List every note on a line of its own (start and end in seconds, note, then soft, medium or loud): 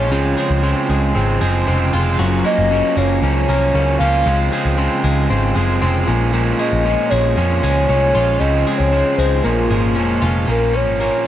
0.00 0.12 A#1 medium
0.00 0.11 A#2 medium
0.00 0.11 F3 soft
0.00 0.11 G#3 soft
0.00 0.37 G#3 medium
0.00 0.12 C#4 soft
0.00 0.63 C#4 medium
0.00 1.93 F4 medium
0.00 0.91 C#5 medium
0.12 0.34 C#2 loud
0.12 0.38 C#3 medium
0.12 0.38 F3 medium
0.12 0.37 G#3 medium
0.12 0.36 C4 medium
0.37 0.62 F3 soft
0.37 0.62 G#3 soft
0.37 0.63 C4 medium
0.50 0.73 C#2 medium
0.63 1.14 C#3 medium
0.63 1.15 F3 medium
0.63 1.15 G#3 medium
0.63 1.16 C4 medium
0.89 1.12 C#2 medium
0.89 1.40 G#3 medium
1.15 1.38 G#1 medium
1.15 1.41 C#3 medium
1.15 1.42 F3 medium
1.15 1.41 G#3 medium
1.15 1.40 C4 medium
1.41 1.64 F#1 loud
1.41 1.66 F3 medium
1.41 1.66 G#3 medium
1.41 1.67 C4 medium
1.67 1.90 F1 medium
1.67 1.93 C#3 medium
1.67 1.93 F3 medium
1.67 1.92 G#3 medium
1.67 1.91 C4 medium
1.93 2.16 F1 medium
1.93 2.18 F3 soft
1.93 2.19 G#3 medium
1.93 2.19 C4 soft
1.93 4.00 F4 medium
2.18 2.41 F#1 medium
2.18 2.45 F#2 medium
2.18 2.45 C#3 medium
2.18 2.45 F3 medium
2.18 4.26 F#3 medium
2.18 2.44 A#3 medium
2.18 2.43 C#4 medium
2.44 2.70 F3 soft
2.44 2.70 A#3 soft
2.44 2.70 C#4 medium
2.44 2.98 D#5 medium
2.58 2.80 F#1 medium
2.70 3.23 F#2 medium
2.70 3.21 C#3 medium
2.70 3.23 F3 medium
2.70 3.23 A#3 medium
2.70 3.24 C#4 medium
2.96 3.19 F#1 medium
2.96 3.48 A#3 medium
2.96 3.20 C#5 medium
3.21 3.45 C#2 medium
3.21 3.49 C#3 soft
3.21 3.49 F3 medium
3.21 3.49 A#3 medium
3.21 3.47 C#4 medium
3.21 3.96 C#5 loud
3.49 3.71 C2 medium
3.49 3.74 F3 soft
3.49 3.74 A#3 soft
3.49 3.75 C#4 medium
3.74 3.97 C#2 medium
3.74 4.01 F#2 medium
3.74 4.01 C#3 medium
3.74 4.01 F3 medium
3.74 4.01 A#3 medium
3.74 4.00 C#4 medium
3.99 4.22 C#2 medium
3.99 4.27 A#3 medium
3.99 4.27 C#4 medium
3.99 7.51 F4 medium
3.99 4.99 F5 loud
4.03 4.25 F3 soft
4.26 4.48 C#2 loud
4.26 4.52 C#3 medium
4.26 4.53 F3 medium
4.26 4.52 G#3 medium
4.26 4.51 C4 medium
4.52 4.77 F3 soft
4.52 4.77 G#3 medium
4.52 4.78 C4 medium
4.65 4.87 C#2 medium
4.78 5.29 C#3 medium
4.78 5.30 F3 loud
4.78 5.31 G#3 medium
4.78 5.31 C4 medium
5.04 5.26 C#2 medium
5.04 5.55 G#3 medium
5.30 5.52 G#1 medium
5.30 5.56 C#3 medium
5.30 5.56 F3 medium
5.30 5.56 G#3 medium
5.30 5.55 C4 medium
5.56 5.78 F#1 medium
5.56 5.81 F3 soft
5.56 5.81 G#3 medium
5.56 5.82 C4 medium
5.82 6.04 F1 loud
5.82 6.08 C#3 medium
5.82 6.08 F3 medium
5.82 6.07 G#3 medium
5.82 6.07 C4 medium
6.07 6.52 A#1 medium
6.07 6.32 A#2 medium
6.07 6.32 F3 soft
6.07 6.33 G#3 medium
6.07 6.33 C#4 medium
6.33 6.59 A#2 medium
6.33 6.59 F3 medium
6.33 6.59 G#3 medium
6.33 6.58 C#4 medium
6.59 6.84 F3 soft
6.59 6.85 G#3 medium
6.59 6.85 C#4 soft
6.59 7.11 D#5 loud
6.73 6.95 A#1 medium
6.85 7.35 A#2 medium
6.85 7.37 F3 medium
6.85 7.37 G#3 medium
6.85 7.38 C#4 medium
7.09 7.34 A#1 medium
7.09 7.63 G#3 medium
7.09 7.87 C#5 loud
7.36 7.59 F2 loud
7.36 7.63 A#2 medium
7.36 7.63 F3 medium
7.36 7.62 G#3 medium
7.36 7.62 C#4 medium
7.63 7.85 C#2 medium
7.63 7.88 F3 medium
7.63 7.88 G#3 medium
7.63 7.89 C#4 medium
7.87 8.11 C2 medium
7.87 8.15 A#2 medium
7.87 8.15 F3 medium
7.87 8.15 G#3 medium
7.87 8.13 C#4 medium
7.87 8.40 C#5 loud
8.15 8.37 A#1 medium
8.15 8.40 F3 soft
8.15 8.41 G#3 soft
8.15 8.41 C#4 medium
8.15 10.21 F4 medium
8.39 8.63 C#2 medium
8.39 8.67 C#3 medium
8.39 8.67 F3 medium
8.39 8.66 G#3 medium
8.39 8.65 C4 medium
8.39 8.77 D#5 loud
8.66 8.92 F3 soft
8.66 8.93 G#3 soft
8.66 8.92 C4 medium
8.78 9.02 C#2 medium
8.78 9.15 C#5 loud
8.93 9.44 C#3 medium
8.93 9.45 F3 medium
8.93 9.44 G#3 medium
8.93 9.45 C4 medium
9.18 9.41 C#2 loud
9.18 9.50 G#3 medium
9.18 9.45 C5 medium
9.43 9.66 A#1 medium
9.43 9.70 A#2 medium
9.43 9.71 F3 medium
9.43 9.70 G#3 medium
9.43 9.70 C#4 medium
9.43 9.96 A#4 medium
9.70 9.96 G#1 medium
9.70 9.96 F3 soft
9.70 9.97 G#3 medium
9.70 9.96 C#4 medium
9.96 10.18 F1 medium
9.96 10.23 A#2 medium
9.96 10.23 F3 medium
9.96 10.22 G#3 medium
9.96 10.21 C#4 medium
10.22 10.44 F1 medium
10.22 10.48 F3 soft
10.22 10.49 G#3 medium
10.22 10.48 C#4 medium
10.22 11.26 F4 medium
10.48 10.87 A#1 medium
10.48 10.74 A#2 medium
10.48 10.75 F3 medium
10.48 10.74 A#3 medium
10.48 10.73 C#4 medium
10.48 10.77 A#4 medium
10.74 10.99 F3 soft
10.74 11.00 A#3 soft
10.74 11.00 C#4 soft
10.74 11.27 C#5 loud
10.87 11.09 G#1 medium
11.00 11.27 A#2 medium
11.00 11.27 F3 medium
11.00 11.27 A#3 medium
11.00 11.27 C#4 medium